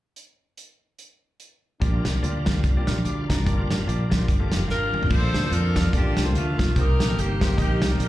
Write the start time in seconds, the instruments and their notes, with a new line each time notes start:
0.16 closed hi-hat
0.57 closed hi-hat
0.99 closed hi-hat
1.40 closed hi-hat
1.80 fingered electric bass A#1, grand piano A#2 A#3 F4 G4 D5, french horn section F3 G3 A#3 D4, tonewheel organ G3 D4 F4 A#4, kick, closed hi-hat
2.05 fingered electric bass C2, snare, closed hi-hat
2.22 fingered electric bass D2, grand piano A#3 F4 G4 D5, closed hi-hat
2.45 grand piano A#3 F4 G4 D5, kick, snare, closed hi-hat
2.64 fingered electric bass C2, kick, closed hi-hat
2.76 grand piano A#3 F4 G4 D5
2.87 fingered electric bass A#1, grand piano F6, snare, closed hi-hat
3.04 fingered electric bass D2, tonewheel organ D5 F5, grand piano D6, closed hi-hat
3.28 fingered electric bass C2, tonewheel organ A#4 D5, grand piano A#5, kick, snare, closed hi-hat
3.44 fingered electric bass G1, grand piano G2 A#3 F4 G4 D5, french horn section G3 A#3, tonewheel organ G3 D4 F4 A#4, kick, closed hi-hat
3.71 fingered electric bass A1, snare, closed hi-hat
3.86 fingered electric bass A#1, grand piano A#3 F4 G4 D5, closed hi-hat
4.10 grand piano A#3 F4 G4 D5, tonewheel organ C5, kick, snare, closed hi-hat
4.28 fingered electric bass G1, tonewheel organ D5, kick, closed hi-hat
4.39 grand piano A#3 F4 G4 A4
4.52 fingered electric bass F1, tonewheel organ F5, snare, closed hi-hat
4.68 fingered electric bass G#1, saxophone section D4 F4 A#4, grand piano F5, tonewheel organ G5, snare
4.92 fingered electric bass A1, grand piano D5, tonewheel organ G5, mid tom
5.03 floor tom
5.08 fingered electric bass A#1, grand piano A#2 A#3 F4 A4 D5, tonewheel organ F3 D4 F4, saxophone section F4 A4 C5, kick, crash
5.34 fingered electric bass D2, snare, closed hi-hat
5.42 grand piano A#3 F4 A4 D5
5.51 fingered electric bass F2, saxophone section D4 F4 A#4, closed hi-hat
5.75 grand piano A#3 F4 A4 D5, kick, snare, closed hi-hat
5.92 fingered electric bass A1, grand piano A#3 F4 A4 D5, saxophone section D4 G4, kick, closed hi-hat
6.17 fingered electric bass C2, snare, closed hi-hat
6.24 grand piano A#3 F4 A4 C5
6.35 fingered electric bass D2, saxophone section A3 D4 F4, closed hi-hat
6.57 fingered electric bass B1, grand piano A#3 F4 A4 F5, kick, snare, closed hi-hat
6.75 fingered electric bass C2, grand piano C3 A#3 D#4 G4 C5, tonewheel organ D#3 A#3 C4 G4, saxophone section D#4 G4 A#4, kick, closed hi-hat
6.99 fingered electric bass A#1, snare, closed hi-hat
7.07 grand piano A#3 D#4 G4 A4
7.17 fingered electric bass G1, saxophone section A#3 D#4 G4, closed hi-hat
7.40 grand piano A#3 D#4 G4 C5, kick, snare, closed hi-hat
7.57 fingered electric bass A#1, grand piano A#3 D#4 G4 D#5, saxophone section A#3 D#4 G4, kick, closed hi-hat
7.81 fingered electric bass C2, snare, closed hi-hat
7.90 grand piano A#3 D#4 G4 D5
7.99 fingered electric bass A#1, saxophone section D#4 G4 A#4, closed hi-hat